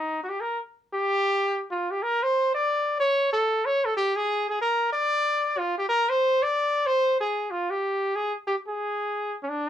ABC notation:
X:1
M:3/4
L:1/16
Q:"Swing" 1/4=186
K:Gphr
V:1 name="Trumpet"
E3/2 _G/2 =G2 B2 z4 G2- | G8 F2 G2 | B2 c4 d6 | _d4 =A4 d2 A2 |
G2 A4 A2 B4 | d8 F2 G2 | B2 c4 d6 | c4 A4 F2 G2- |
G4 A2 z2 G2 A2- | A6- A3/2 _D/2 =D2 z2 |]